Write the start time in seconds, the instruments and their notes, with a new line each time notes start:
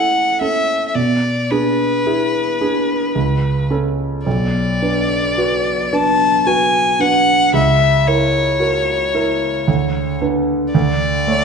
Already playing: grand piano A2 C#4 E4 A4, violin F#5
0.41 grand piano C#4 A4, violin E5
0.88 violin E5
0.95 grand piano B2, violin D5
1.51 grand piano D4 G#4, violin B4
2.06 grand piano E4 G#4
2.61 grand piano D4 G#4
3.15 grand piano C#2
3.70 grand piano C#4 A4
4.26 grand piano B1, violin D5
4.82 grand piano D4 B4
5.38 grand piano F#4 B4
5.93 grand piano D4 B4, violin A5
6.46 grand piano F#4 B4, violin G#5
7.00 grand piano D4 B4, violin F#5
7.53 grand piano C#2, violin E5
8.07 grand piano E4 A#4, violin C#5
8.60 grand piano F#4 A#4
9.14 grand piano E4 A#4
9.68 grand piano D2
10.21 grand piano D4 B4
10.74 grand piano D2, violin D5
11.27 grand piano A3 C#5